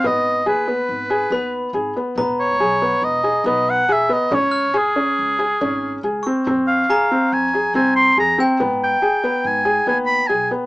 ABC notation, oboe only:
X:1
M:5/4
L:1/8
Q:1/4=140
K:Ab
V:1 name="Oboe"
e2 _c6 z2 | z d3 e2 e _g =e _e | d2 A6 z2 | z f3 a2 a c' b z |
z g3 a2 a _c' a z |]